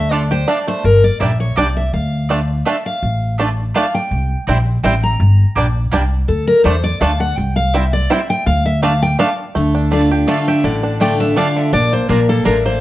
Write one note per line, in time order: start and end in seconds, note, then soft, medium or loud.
0.00 0.43 D2 loud
0.00 0.27 A3 medium
0.00 0.11 D4 medium
0.00 0.12 E5 loud
0.11 0.21 A3 medium
0.11 0.47 D4 medium
0.11 0.22 F4 medium
0.11 0.31 D5 medium
0.11 0.22 D5 medium
0.11 0.22 A5 loud
0.31 0.81 G4 medium
0.31 0.48 C5 loud
0.48 0.58 A3 loud
0.48 0.84 D4 medium
0.48 0.58 F4 loud
0.48 0.67 D5 loud
0.48 0.58 D5 loud
0.48 0.58 A5 loud
0.68 0.84 A3 medium
0.68 0.84 C5 loud
0.84 1.07 G1 loud
0.84 1.04 A#4 medium
1.04 1.20 D5 loud
1.20 1.52 A#1 medium
1.20 1.30 G3 medium
1.20 1.30 A#3 medium
1.20 1.30 D4 medium
1.20 1.30 G4 medium
1.20 1.31 D5 medium
1.20 1.39 E5 loud
1.20 1.31 G5 medium
1.40 1.56 C#5 loud
1.56 1.88 C2 medium
1.56 1.66 G3 medium
1.56 1.66 A#3 loud
1.56 1.66 D4 medium
1.56 1.67 G4 medium
1.56 1.67 D5 loud
1.56 1.76 D5 loud
1.56 1.67 G5 loud
1.76 1.93 E5 loud
1.93 2.61 D2 medium
1.93 2.62 F5 medium
2.29 2.39 A3 medium
2.29 2.39 D4 medium
2.29 2.39 F4 medium
2.29 2.40 D5 medium
2.29 2.40 A5 medium
2.65 2.75 A3 loud
2.65 2.75 A3 medium
2.65 2.75 D4 medium
2.65 2.76 F4 loud
2.65 2.76 D5 loud
2.65 2.85 E5 medium
2.65 2.76 A5 loud
2.86 3.35 F5 medium
3.03 3.71 A1 medium
3.38 3.48 A3 medium
3.38 3.48 D4 medium
3.38 3.48 F4 medium
3.38 3.49 D5 medium
3.38 3.49 A5 loud
3.74 3.84 A3 loud
3.74 3.84 A3 medium
3.74 3.84 D4 medium
3.74 3.85 F4 medium
3.74 3.85 D5 loud
3.74 3.94 F5 medium
3.74 3.85 A5 loud
3.94 4.44 G5 loud
4.11 4.34 C2 medium
4.47 4.78 A#1 medium
4.47 4.57 G3 medium
4.47 4.57 C4 medium
4.47 4.57 E4 medium
4.47 4.57 C5 medium
4.47 4.58 G5 medium
4.83 5.15 A1 medium
4.83 4.93 G3 medium
4.83 4.93 C4 loud
4.83 4.93 C4 medium
4.83 4.94 E4 loud
4.83 4.93 E4 medium
4.83 4.94 C5 loud
4.83 5.03 G5 medium
4.83 4.94 G5 loud
5.03 5.53 A#5 medium
5.20 5.42 G1 loud
5.55 5.87 A#1 loud
5.55 5.65 G3 medium
5.55 5.66 A#3 medium
5.55 5.66 D4 medium
5.55 5.66 G4 medium
5.55 5.66 D5 medium
5.55 5.66 G5 loud
5.92 6.23 C2 medium
5.92 6.02 G3 medium
5.92 6.02 A#3 loud
5.92 6.02 D4 medium
5.92 6.02 G4 loud
5.92 6.02 D5 loud
5.92 6.03 G5 loud
6.28 6.51 D2 medium
6.28 6.47 A4 medium
6.47 6.63 A#4 loud
6.64 6.96 E2 loud
6.64 6.75 A3 medium
6.64 6.74 A3 medium
6.64 6.74 D4 medium
6.64 6.75 F4 medium
6.64 6.83 C5 medium
6.64 6.75 D5 medium
6.64 6.75 A5 medium
6.84 7.00 D5 loud
7.01 7.32 D2 medium
7.01 7.11 A3 loud
7.01 7.10 A3 medium
7.01 7.10 D4 medium
7.01 7.11 F4 loud
7.01 7.11 D5 loud
7.01 7.20 F5 medium
7.01 7.12 A5 loud
7.20 7.37 F#5 loud
7.37 8.06 C2 loud
7.37 7.56 G5 loud
7.56 7.74 F5 loud
7.74 7.83 G3 medium
7.74 7.84 C4 medium
7.74 7.83 C4 medium
7.74 7.84 E4 medium
7.74 7.83 E4 medium
7.74 7.84 C5 medium
7.74 7.93 E5 medium
7.74 7.84 G5 medium
7.93 8.09 D5 loud
8.10 8.19 G3 medium
8.10 8.20 C4 loud
8.10 8.19 C4 medium
8.10 8.20 E4 loud
8.10 8.19 E4 medium
8.10 8.20 C5 loud
8.10 8.29 E5 loud
8.10 8.20 G5 loud
8.30 8.46 G5 loud
8.46 9.14 D2 loud
8.46 8.65 F5 loud
8.66 8.82 E5 loud
8.82 8.92 A3 medium
8.82 8.91 A3 medium
8.82 8.92 D4 medium
8.82 8.93 F4 medium
8.82 8.93 D5 medium
8.82 9.02 F5 medium
8.82 8.93 A5 medium
9.02 9.19 G5 loud
9.19 9.29 A3 medium
9.19 9.28 A3 medium
9.19 9.28 D4 medium
9.19 9.29 F4 loud
9.19 9.29 D5 loud
9.19 9.31 F5 loud
9.19 9.29 A5 loud
9.55 10.24 D2 medium
9.55 9.90 D3 medium
9.55 10.07 A3 medium
9.75 9.92 D4 medium
9.91 10.10 D3 medium
9.91 10.01 A3 medium
9.91 10.11 A3 medium
9.91 10.83 D4 medium
9.91 10.11 D4 loud
9.91 10.01 F4 medium
9.91 10.10 F4 medium
9.91 10.02 D5 medium
9.91 10.02 A5 medium
10.11 10.28 D4 medium
10.11 10.27 F4 medium
10.11 10.47 G4 medium
10.27 10.62 D3 medium
10.27 10.37 A3 medium
10.27 10.63 A3 medium
10.27 10.80 A3 medium
10.27 10.63 D4 medium
10.27 10.38 F4 medium
10.27 10.63 F4 loud
10.27 10.38 D5 loud
10.27 10.47 F5 medium
10.27 10.38 A5 loud
10.48 10.97 G4 medium
10.48 10.64 E5 medium
10.64 11.32 A1 medium
10.64 11.33 A2 medium
10.64 11.16 D3 medium
10.64 10.98 D5 medium
10.83 11.21 D4 medium
11.00 11.35 D3 medium
11.00 11.10 A3 medium
11.00 11.35 A3 loud
11.00 11.53 A3 medium
11.00 11.35 D4 medium
11.00 11.10 F4 medium
11.00 11.36 F4 medium
11.00 11.11 D5 medium
11.00 11.20 G5 medium
11.00 11.11 A5 loud
11.20 11.37 D4 medium
11.20 11.36 E5 loud
11.36 11.71 D3 medium
11.36 11.46 A3 loud
11.36 11.71 A3 medium
11.36 11.73 D4 medium
11.36 11.72 D4 medium
11.36 11.46 F4 loud
11.36 11.72 F4 medium
11.36 11.47 D5 loud
11.36 11.56 F5 loud
11.36 11.47 A5 loud
11.56 11.73 D3 medium
11.56 11.73 E5 medium
11.73 11.95 A#1 medium
11.73 12.08 A#2 loud
11.73 12.09 D4 medium
11.73 11.92 D5 loud
11.93 12.28 A#3 medium
11.93 12.09 C5 medium
12.09 12.40 A#1 medium
12.09 12.44 A#2 medium
12.09 12.19 A#3 medium
12.09 12.45 D4 medium
12.09 12.19 F4 medium
12.09 12.28 A#4 medium
12.09 12.19 D5 medium
12.09 12.19 A#5 medium
12.29 12.64 A#3 medium
12.29 12.45 A4 loud
12.45 12.77 A1 medium
12.45 12.80 A3 medium
12.45 12.55 A#3 loud
12.45 12.81 D4 medium
12.45 12.55 F4 medium
12.45 12.64 A#4 medium
12.45 12.56 D5 loud
12.45 12.56 A#5 loud
12.66 12.81 A#3 medium
12.66 12.81 C5 medium